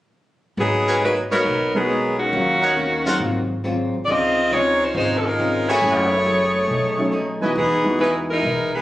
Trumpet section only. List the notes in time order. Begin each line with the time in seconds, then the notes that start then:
0.87 F#4 A#4 B4 G#5
1.31 F#4 A#4 B4 C#5
2.62 D#4 A#4 C#5 F#5
3.06 F4 A#4 C5 F#5
5.68 F#4 G#4 E5 G#5
7.42 E4 B4 D#5 G#5
7.99 E4 B4 D#5 G#5